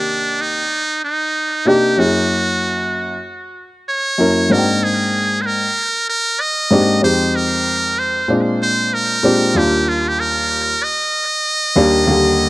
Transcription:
Already playing: grand piano C3 D#3 A#3 G4 D5, muted trumpet D4
0.41 muted trumpet D#4
1.04 muted trumpet D#4
1.65 grand piano C3 A#3 D4 D#4 G4, muted trumpet G4
1.97 grand piano F#2 A#3 C#4 E4 G#4, muted trumpet F#4
3.89 muted trumpet C#5
4.18 grand piano F#2 A#3 C#4 E4 A#4
4.50 grand piano G#2 A#3 C4 D4 D#4 F#4, muted trumpet A#4
4.58 grand piano G5
4.83 muted trumpet G#4
5.41 muted trumpet C5
5.46 muted trumpet A#4
6.09 muted trumpet A#4
6.41 muted trumpet D#5
6.71 grand piano G#2 A#3 C4 D4 D#4 G4
7.01 grand piano F2 G#3 C4 D#4 G4, muted trumpet C5
7.36 muted trumpet A#4
7.99 muted trumpet C5
8.28 grand piano A#2 G#3 C4 D4 F4
8.63 muted trumpet C5
8.94 muted trumpet A#4
9.23 grand piano A#2 G#3 C4 D4 G4
9.54 grand piano D#2 G3 A#3 D4 F4, muted trumpet G4
9.89 muted trumpet F4
10.08 muted trumpet G4
10.20 muted trumpet A#4
10.83 muted trumpet D#5
11.76 grand piano D#2 G3 A#3 D4 G4
12.07 grand piano D#2 D3 G3 A#3 G4

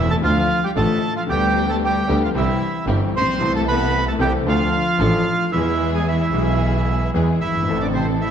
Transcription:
Already playing: double bass E1, grand piano E1 E2 C3 E3 A3 E4, string section A3 C4 E4, bandoneon E5
0.10 bandoneon A4 A5
0.14 cello A3
0.22 grand piano D2 D3 F3 A3 F4, double bass D2, string section A3 D4 F4, bandoneon F4 F5
0.26 cello F3
0.64 cello G3, bandoneon G4 G5
0.75 double bass A1, grand piano A1 A2 D3 F3 A3 F4, string section A3 D4 F4, bandoneon A4 A5
0.80 cello A3
1.16 cello F3, bandoneon F4 F5
1.27 double bass D2, grand piano D2 D3 G3 B3, string section B3 D4 G4, bandoneon G4
1.31 cello G3, grand piano G4, bandoneon G5
1.69 cello A3, bandoneon A4 A5
1.84 cello G3, bandoneon G4 G5
2.07 double bass D2, grand piano D2 D3 G3 B3 G4, string section B3 D4 G4
2.24 cello F3, bandoneon F4 F5
2.34 double bass C2, grand piano C2 C3 E3 G3 C4 G4, cello E3, string section C4 E4 G4, bandoneon E4 E5
2.86 double bass G1, grand piano G1 G2 E3 G3 C4 G4, string section C4 E4 G4
3.14 double bass A#1, cello C4, bandoneon C5
3.18 grand piano A1, bandoneon C6
3.27 grand piano A#1
3.33 grand piano B1
3.38 double bass C2, grand piano C2 C3 E3 A3 E4, string section A3 E4 A4
3.42 grand piano A4
3.56 cello A3, bandoneon A4 A5
3.68 cello B3, bandoneon B4 B5
4.07 cello A3, bandoneon A4 A5
4.18 double bass C2, grand piano C2 C3 E3 A3 C4 A4, string section C4 E4 A4, bandoneon G4 G5
4.23 cello G3
4.44 double bass D2, grand piano D2 D3 F3 A3 D4 A4, string section D4 F4 A4
4.49 cello F3, bandoneon F4 F5
4.99 double bass A1, grand piano A1 A2 F3 A3 D4 A4, string section D4 F4 A4
5.52 double bass E2, grand piano E2 E3 G#3 B3, cello E3, string section B3 E4 G#4, bandoneon E4 E5
5.56 grand piano G#4
5.94 cello G#3, bandoneon G#4 G#5
6.07 cello E3, bandoneon E4 E5
6.31 double bass B1, grand piano B1 B2 E3 G#3 B3 G#4, string section B3 E4 G#4
7.13 double bass E2, grand piano E2 E3 G#3 B3 G#4, string section B3 E4 G#4
7.40 double bass G1, cello E3, bandoneon E4 E5
7.48 grand piano F#1
7.55 grand piano G1
7.62 grand piano G#1
7.67 double bass A1, grand piano A1 A2 E3 A3 C4, string section C4 E4 A4
7.71 grand piano A4
7.81 cello D3, bandoneon D4 D5
7.93 cello C3, bandoneon C4 C5
8.20 cello E3, bandoneon E4 E5

